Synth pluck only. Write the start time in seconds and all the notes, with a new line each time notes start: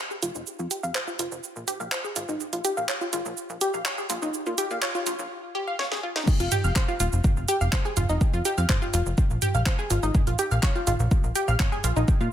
0.11 G#4
0.22 F4
0.35 D#4
0.59 F4
0.71 G4
0.83 F5
0.95 C5
1.07 F4
1.19 F4
1.68 G4
1.80 F5
1.92 C5
2.04 G#4
2.16 F4
2.29 D#4
2.53 F4
2.65 G4
2.77 F5
2.89 C#5
3.01 F4
3.13 F4
3.61 G4
3.74 F5
3.85 C#5
3.98 G#4
4.10 F4
4.22 D#4
4.46 F4
4.58 G4
4.71 F5
4.82 C#5
4.95 F4
5.06 F4
5.55 G4
5.67 F5
5.79 C#5
5.92 G#4
6.03 F4
6.16 D#4
6.40 F4 F5
6.52 G4 G5
6.64 F5 F6
6.76 C5 C6
6.88 F4 F5
7.00 F4 F5
7.49 G4 G5
7.61 F5 F6
7.73 C5 C6
7.85 G#4 G#5
7.97 F4 F5
8.09 D#4 D#5
8.34 F4 F5
8.45 G4 G5
8.58 F5 F6
8.69 C5 C6
8.82 F4 F5
8.94 F4 F5
9.42 G4 G5
9.55 F5 F6
9.66 C5 C6
9.79 G#4 G#5
9.90 F4 F5
10.03 D#4 D#5
10.27 F4 F5
10.39 G4 G5
10.51 F5 F6
10.63 C#5 C#6
10.75 F4 F5
10.87 F4 F5
11.35 G4 G5
11.48 F5 F6
11.60 C#5 C#6
11.72 G#4 G#5
11.84 F4 F5
11.96 D#4 D#5
12.21 F4 F5